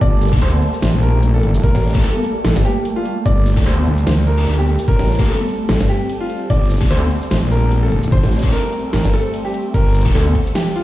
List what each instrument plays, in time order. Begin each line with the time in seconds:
Already playing: supersaw synth G3 A3 A#3, ambient pad A5
0.01 wobble bass G1, grand piano D5, kick, closed hi-hat
0.22 closed hi-hat, shaker
0.25 closed hi-hat
0.28 closed hi-hat
0.32 distorted electric guitar A#3 D4 G4 A4, kick
0.42 detuned saw bass D2, grand piano C5, closed hi-hat
0.62 closed hi-hat
0.73 shaker
0.82 wobble bass A1, grand piano C5, snare, closed hi-hat
0.93 wobble bass A#1
1.03 grand piano A#4, closed hi-hat
1.23 closed hi-hat
1.34 grand piano A4
1.43 closed hi-hat
1.54 shaker
1.63 wobble bass G1, grand piano A#4, kick, closed hi-hat
1.75 detuned saw bass A1
1.84 closed hi-hat
1.87 closed hi-hat
1.91 distorted electric guitar A4, closed hi-hat
1.95 distorted electric guitar A#3 D4 G4, kick
2.04 grand piano A4, closed hi-hat
2.24 closed hi-hat
2.44 wobble bass A1, grand piano A4, snare, closed hi-hat
2.56 detuned saw bass G1, shaker
2.65 grand piano G4, closed hi-hat
2.85 closed hi-hat
2.96 grand piano F4
3.05 closed hi-hat
3.26 wobble bass G1, grand piano D5, kick, closed hi-hat
3.46 closed hi-hat, shaker
3.50 closed hi-hat
3.53 distorted electric guitar A4, closed hi-hat
3.57 distorted electric guitar A#3 D4 G4, kick
3.66 detuned saw bass D2, grand piano C5, closed hi-hat
3.86 wobble bass D2, closed hi-hat
3.98 shaker
4.07 wobble bass D2, grand piano C5, snare, closed hi-hat
4.27 grand piano A#4, closed hi-hat
4.38 distorted electric guitar A#3 D4 G4 A4
4.47 wobble bass D2, closed hi-hat
4.58 grand piano G4
4.68 closed hi-hat
4.79 closed hi-hat, shaker
4.88 wobble bass G1, supersaw synth C4, grand piano A#4, kick, closed hi-hat, crash
4.99 detuned saw bass A1
5.08 closed hi-hat
5.12 closed hi-hat
5.15 distorted electric guitar A4, closed hi-hat
5.19 distorted electric guitar A#3 D4 G4, kick
5.28 grand piano A4, closed hi-hat, crash
5.49 closed hi-hat
5.69 wobble bass A1, grand piano A4, snare, closed hi-hat, crash
5.80 detuned saw bass G1, shaker
5.89 grand piano G4, closed hi-hat
6.09 closed hi-hat, crash
6.21 grand piano F4
6.30 closed hi-hat
6.50 wobble bass G1, grand piano D5, kick, closed hi-hat, crash
6.70 closed hi-hat, shaker
6.74 closed hi-hat
6.77 distorted electric guitar A4, closed hi-hat
6.81 distorted electric guitar A#3 D4 G4, kick
6.91 detuned saw bass D2, grand piano C5, closed hi-hat, crash
7.11 closed hi-hat
7.22 shaker
7.31 wobble bass A1, grand piano C5, snare, closed hi-hat, crash
7.42 wobble bass A#1
7.51 grand piano A#4, closed hi-hat
7.72 closed hi-hat, crash
7.83 grand piano A4
7.92 closed hi-hat
8.03 shaker
8.12 wobble bass G1, grand piano C5, kick, closed hi-hat, crash
8.23 detuned saw bass A1
8.32 closed hi-hat
8.36 closed hi-hat
8.39 closed hi-hat
8.43 distorted electric guitar A#3 D4 G4 A4, kick
8.53 grand piano A#4, closed hi-hat, crash
8.73 closed hi-hat
8.93 wobble bass A1, grand piano A#4, snare, closed hi-hat, crash
9.04 detuned saw bass G1, shaker
9.13 grand piano A4, closed hi-hat
9.34 closed hi-hat, crash
9.45 grand piano G4
9.54 closed hi-hat
9.74 wobble bass G1, grand piano A#4, kick, closed hi-hat, crash
9.95 closed hi-hat, shaker
9.98 closed hi-hat
10.01 distorted electric guitar A4, closed hi-hat
10.06 distorted electric guitar A#3 D4 G4, kick
10.15 detuned saw bass D2, grand piano A4, closed hi-hat, crash
10.35 kick, closed hi-hat
10.46 shaker
10.55 grand piano G4, snare, closed hi-hat, crash
10.76 grand piano F4, closed hi-hat